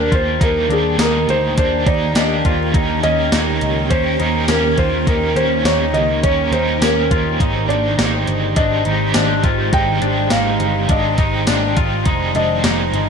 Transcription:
Already playing: ambient pad D#3 A#3 G4, overdriven electric guitar A#3 D4 G4, clean electric guitar D4, felt piano A#4
0.11 picked electric bass D#2, clean electric guitar F4, felt piano C5, kick, closed hi-hat
0.38 picked electric bass D#2, overdriven electric guitar D#3 G3, clean electric guitar D#4, kick, closed hi-hat
0.42 overdriven electric guitar A#3 D4 G4, felt piano A#4
0.70 picked electric bass D#2, clean electric guitar D4, felt piano G#4, closed hi-hat
0.98 picked electric bass D#2, clean electric guitar D#4, felt piano A#4, snare, closed hi-hat, tambourine
1.28 picked electric bass D2, felt piano C5, closed hi-hat
1.55 picked electric bass D#2, overdriven electric guitar G3 A#3 D4, clean electric guitar D4, felt piano C5, kick, closed hi-hat
1.60 overdriven electric guitar G4
1.85 picked electric bass D#2, clean electric guitar D#4, overdriven electric guitar G4, felt piano D5, kick, closed hi-hat
1.90 overdriven electric guitar A#3
2.15 picked electric bass D#2, clean electric guitar D4, felt piano D#5, snare, closed hi-hat, tambourine
2.45 picked electric bass D#2, clean electric guitar F4, kick, closed hi-hat
2.72 picked electric bass D#2, overdriven electric guitar D#3 A#3, ambient pad C#4, clean electric guitar D#4, kick, closed hi-hat
2.76 overdriven electric guitar C#4 G4 A#4
3.03 picked electric bass D#2, clean electric guitar C#4, felt piano D#5, closed hi-hat
3.32 picked electric bass D#2, clean electric guitar D#4, snare, closed hi-hat, tambourine
3.61 picked electric bass C#2, closed hi-hat
3.90 picked electric bass D#2, overdriven electric guitar A#3 C#4 G4, clean electric guitar C#4, felt piano C5, kick, closed hi-hat
3.94 overdriven electric guitar A#4
4.19 picked electric bass D#2, clean electric guitar D#4, overdriven electric guitar G4 A#4, closed hi-hat
4.23 overdriven electric guitar C#4
4.48 picked electric bass D#2, clean electric guitar C#4, felt piano A#4, snare, closed hi-hat, tambourine
4.78 picked electric bass D#2, clean electric guitar F4, felt piano C5, kick, closed hi-hat
5.05 picked electric bass D#2, overdriven electric guitar D#3 A#3 C#4, clean electric guitar D#4, felt piano A#4, ambient pad C5, kick, closed hi-hat
5.11 overdriven electric guitar G4 A#4
5.36 picked electric bass D#2, clean electric guitar C#4, felt piano C5, closed hi-hat
5.64 picked electric bass D#2, clean electric guitar D#4, felt piano C#5, snare, closed hi-hat, tambourine
5.94 picked electric bass C#2, felt piano D#5, closed hi-hat
6.23 picked electric bass D#2, overdriven electric guitar A#3 C#4 G4, clean electric guitar C#4, felt piano C#5, kick, closed hi-hat
6.28 overdriven electric guitar A#4
6.52 picked electric bass D#2, clean electric guitar D#4, overdriven electric guitar G4 A#4, felt piano C5, closed hi-hat
6.57 overdriven electric guitar C#4
6.81 picked electric bass D#2, clean electric guitar C#4, felt piano A#4, snare, closed hi-hat, tambourine
7.11 picked electric bass D#2, clean electric guitar F4, kick, closed hi-hat
7.39 picked electric bass G#1, overdriven electric guitar G#3 C4, ambient pad G#3, clean electric guitar D#4, kick, closed hi-hat
7.44 overdriven electric guitar D#4 G4
7.69 picked electric bass G#1, clean electric guitar D4, felt piano D5, closed hi-hat
7.98 picked electric bass G#1, clean electric guitar D#4, snare, closed hi-hat, tambourine
8.27 picked electric bass G1, closed hi-hat
8.56 picked electric bass G#1, overdriven electric guitar G#3 C4 D#4, clean electric guitar D4, felt piano D#5, kick, closed hi-hat
8.60 overdriven electric guitar G4
8.85 picked electric bass G#1, clean electric guitar D#4, overdriven electric guitar D#4 G4, closed hi-hat
8.89 overdriven electric guitar C4
9.14 picked electric bass G#1, clean electric guitar D4, snare, closed hi-hat, tambourine
9.44 picked electric bass G#1, clean electric guitar F4, kick, closed hi-hat
9.71 picked electric bass G#1, overdriven electric guitar G#3 C4, clean electric guitar D#4, felt piano G5, kick, closed hi-hat
9.76 overdriven electric guitar D#4 G4
10.02 picked electric bass G#1, clean electric guitar D4, closed hi-hat
10.30 picked electric bass G#1, clean electric guitar D#4, felt piano F5, snare, closed hi-hat, tambourine
10.60 picked electric bass G1, closed hi-hat
10.88 picked electric bass G#1, overdriven electric guitar G#3 C4 D#4, clean electric guitar D4, felt piano D#5, kick, closed hi-hat
10.93 overdriven electric guitar G4
11.18 picked electric bass G#1, clean electric guitar D#4, overdriven electric guitar D#4 G4, kick, closed hi-hat
11.23 overdriven electric guitar C4
11.47 picked electric bass G#1, clean electric guitar D4, snare, closed hi-hat, tambourine
11.77 picked electric bass G#1, clean electric guitar F4, kick, closed hi-hat
12.05 picked electric bass F1, ambient pad D#3 F4, overdriven electric guitar F3 C4, clean electric guitar D#4, kick, closed hi-hat
12.10 overdriven electric guitar D#4 G#4
12.35 picked electric bass F1, clean electric guitar D4, felt piano D#5, closed hi-hat
12.64 picked electric bass F1, clean electric guitar D#4, snare, closed hi-hat, tambourine
12.93 picked electric bass G1, closed hi-hat

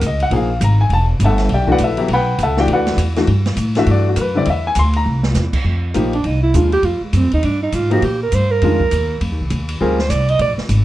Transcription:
0.01 upright bass C#2, hi-hat pedal, ride
0.07 grand piano D#5
0.20 grand piano F#5, ride
0.31 upright bass A#1, grand piano F3 A#3 D#4 G#4, ride
0.36 grand piano F5
0.61 upright bass G#1, grand piano A#5, hi-hat pedal, ride
0.81 grand piano G#5
0.89 upright bass E1, grand piano A5, ride
1.19 upright bass G1, hi-hat pedal, ride
1.24 grand piano A4 E5 F#5 A5
1.38 snare, ride
1.49 upright bass B1, ride
1.53 grand piano G4 D5 E5 G5
1.67 grand piano E3 A3 D4 F#4, kick
1.72 grand piano F#4 B4 D5 F#5
1.78 upright bass A#1, hi-hat pedal, ride
1.84 grand piano E4 A4 B4 E5
1.97 grand piano F#3 B3 E4 G4, ride
2.08 upright bass B1, ride
2.13 grand piano B4 F#5 G5 B5
2.38 upright bass C#2, hi-hat pedal, ride
2.43 grand piano A4 E5 F#5 A5
2.57 grand piano E3 A3 D4 F#4 G4 D5 E5 G5, snare
2.68 upright bass D2, ride
2.73 grand piano F#4 B4 D5 F#5
2.87 snare, ride
2.97 upright bass E2, hi-hat pedal, ride
3.16 grand piano E3 A3 D4 F#4, snare, ride
3.27 upright bass G2, ride
3.46 snare, ride
3.56 upright bass A2, hi-hat pedal, ride
3.75 grand piano E3 A3 D4 F#4 E5, snare, ride
3.86 upright bass G2, ride
3.91 grand piano D5
4.09 grand piano F#4
4.16 upright bass F#2, grand piano A#4, hi-hat pedal, ride
4.21 grand piano B4
4.35 grand piano D3 G3 C4 E4 D5
4.45 upright bass E2, grand piano D#5, ride
4.50 grand piano E5
4.67 grand piano G#5
4.75 upright bass D2, hi-hat pedal, ride
4.79 grand piano C6
4.93 grand piano A#5, ride
5.06 upright bass C2
5.23 snare
5.34 upright bass E2, snare, hi-hat pedal
5.53 kick, crash
5.64 upright bass F2
5.94 upright bass A#1, grand piano F3 A#3 D#4 G4, hi-hat pedal, ride
6.13 alto saxophone D4, ride
6.24 upright bass C2, alto saxophone D#4, ride
6.43 alto saxophone E4
6.54 upright bass D#2, grand piano D#3 G#3 D4 F4, alto saxophone F4, hi-hat pedal, ride
6.72 alto saxophone G4, ride
6.82 upright bass F2, alto saxophone F4, ride
7.01 alto saxophone G#3, muted upright bass stroke
7.13 upright bass F#2, alto saxophone C4, hi-hat pedal, ride
7.23 upright bass F2
7.31 upright bass D#2, alto saxophone D#4, ride
7.43 upright bass G2, alto saxophone D4, ride
7.63 alto saxophone D#4
7.72 upright bass G#2, alto saxophone F4, hi-hat pedal, ride
7.90 grand piano F3 A#3 D#4 G4, alto saxophone F#4, ride
8.02 upright bass A#2, alto saxophone G4, ride
8.23 alto saxophone A#4
8.32 upright bass G2, alto saxophone C5, hi-hat pedal, ride
8.51 alto saxophone A#4
8.62 upright bass F2, grand piano D#3 G#3 D4 F4, ride
8.80 kick
8.91 upright bass D#2, hi-hat pedal, ride
9.21 upright bass F2, ride
9.31 upright bass D#2
9.41 upright bass C2
9.50 upright bass D#2, hi-hat pedal, ride
9.69 ride
9.80 upright bass D2, grand piano G3 C4 F4 G#4, alto saxophone A#4
9.99 alto saxophone C5, snare
10.10 upright bass C2, alto saxophone D5, hi-hat pedal, ride
10.28 alto saxophone D#5, ride
10.39 upright bass A#1, alto saxophone D5, ride
10.58 muted upright bass stroke, snare
10.69 upright bass G#1, hi-hat pedal, ride

